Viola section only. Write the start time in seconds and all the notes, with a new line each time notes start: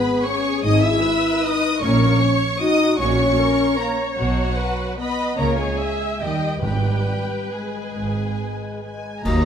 Already playing: G#4
1.03 B4
1.82 A#4
2.21 C#5
2.61 F#4
3.38 A#4
3.80 C#5
4.57 B4
5.00 D#5
5.38 C#5
5.78 E5
6.21 D#5
6.64 B4